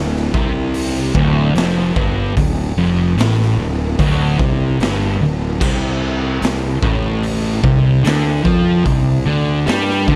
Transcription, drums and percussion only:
0.16 snare soft
0.34 kick loud
0.74 open hi-hat medium
1.15 kick loud
1.55 snare loud
1.55 open hi-hat medium
1.96 kick loud
2.37 kick medium
2.37 open hi-hat medium
3.18 snare loud
3.18 open hi-hat medium
3.42 snare soft
3.99 kick loud
3.99 open hi-hat medium
4.39 kick medium
4.80 snare loud
4.80 open hi-hat medium
5.61 kick loud
5.61 crash loud
6.42 snare loud
6.42 open hi-hat medium
6.83 kick loud
7.23 open hi-hat medium
7.64 kick loud
8.05 snare loud
8.05 open hi-hat medium
8.45 kick loud
8.86 kick medium
8.86 open hi-hat medium
9.67 snare loud
9.67 open hi-hat medium
9.90 snare soft
10.08 kick loud

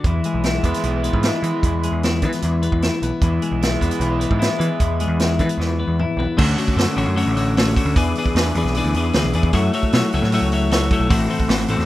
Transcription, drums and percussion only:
0.04 kick loud
0.04 closed hi-hat medium
0.24 closed hi-hat medium
0.43 snare medium
0.43 closed hi-hat medium
0.64 kick medium
0.64 closed hi-hat medium
0.74 snare soft
0.74 closed hi-hat medium
0.83 closed hi-hat medium
1.04 closed hi-hat medium
1.13 kick medium
1.23 snare loud
1.23 closed hi-hat medium
1.43 closed hi-hat medium
1.63 kick loud
1.63 closed hi-hat medium
1.83 closed hi-hat medium
2.03 snare loud
2.03 closed hi-hat medium
2.22 kick medium
2.22 closed hi-hat medium
2.32 snare soft
2.32 closed hi-hat medium
2.42 closed hi-hat medium
2.63 closed hi-hat medium
2.72 kick medium
2.82 snare medium
2.82 closed hi-hat medium
3.03 closed hi-hat medium
3.22 kick loud
3.22 closed hi-hat medium
3.42 closed hi-hat medium
3.62 snare loud
3.62 closed hi-hat medium
3.81 kick medium
3.81 closed hi-hat medium
3.91 closed hi-hat medium
4.01 closed hi-hat medium
4.21 closed hi-hat medium
4.31 kick medium
4.42 snare loud
4.42 closed hi-hat medium
4.61 closed hi-hat medium
4.80 kick loud
4.80 closed hi-hat medium
5.00 closed hi-hat medium
5.20 snare loud
5.20 closed hi-hat medium
5.39 kick medium
5.39 closed hi-hat medium
5.49 closed hi-hat medium
5.61 snare medium
5.99 mid tom medium
6.20 floor tom medium
6.39 kick loud
6.39 crash loud
6.58 open hi-hat medium
6.68 kick medium
6.78 snare loud
6.78 open hi-hat medium
6.98 open hi-hat medium
7.17 open hi-hat medium
7.37 open hi-hat medium
7.57 snare loud
7.57 open hi-hat medium
7.76 kick medium
7.76 open hi-hat medium
7.96 kick loud
7.96 open hi-hat medium
8.15 open hi-hat medium
8.26 kick medium
8.36 snare loud
8.36 open hi-hat medium
8.55 open hi-hat medium
8.67 snare soft
8.75 open hi-hat medium
8.94 open hi-hat medium
9.13 snare loud
9.13 open hi-hat medium
9.33 open hi-hat medium
9.43 kick medium
9.53 kick loud
9.53 open hi-hat medium
9.73 open hi-hat medium
9.83 kick medium
9.92 snare loud
9.92 open hi-hat medium
10.12 open hi-hat medium
10.23 snare soft
10.32 open hi-hat medium
10.52 open hi-hat medium
10.71 snare loud
10.71 open hi-hat medium
10.91 kick loud
10.91 open hi-hat medium
11.10 kick loud
11.10 open hi-hat loud
11.30 open hi-hat medium
11.40 kick medium
11.49 snare loud
11.49 open hi-hat medium
11.68 open hi-hat medium
11.79 snare soft

